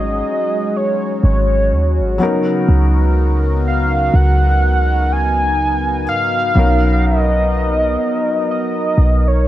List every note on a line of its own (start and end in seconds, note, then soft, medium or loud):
0.00 0.22 G#1 loud
0.00 2.15 F#3 medium
0.00 2.16 G#3 medium
0.00 2.17 G#3 medium
0.00 2.16 C#4 medium
0.00 2.17 D#4 medium
0.00 6.51 F#4 medium
0.00 2.17 G#4 medium
0.00 0.78 D#5 medium
0.76 1.24 C#5 medium
1.23 1.73 G#1 loud
1.23 2.17 C#5 medium
1.72 2.01 D#2 medium
2.00 2.19 G#1 loud
2.18 6.51 C#3 medium
2.18 6.02 F#3 medium
2.18 6.03 B3 medium
2.18 9.48 B3 medium
2.18 6.03 C#4 medium
2.18 9.48 D#4 medium
2.18 6.04 D#4 medium
2.18 6.51 A#4 medium
2.23 6.05 A#4 medium
2.68 4.10 C#2 loud
3.67 4.17 F5 loud
4.14 6.09 C#2 loud
4.14 5.14 F#5 loud
5.12 6.08 G#5 loud
6.07 6.53 G#2 medium
6.07 7.07 F5 loud
6.54 7.97 B1 loud
6.54 9.48 F#3 medium
6.54 9.48 B3 medium
6.54 9.48 C#4 medium
6.54 9.48 D#4 medium
6.54 9.48 A#4 medium
6.59 9.48 A#4 medium
7.06 8.50 D#5 loud
8.51 9.29 D#5 medium
8.98 9.48 B1 loud
9.27 9.48 C#5 medium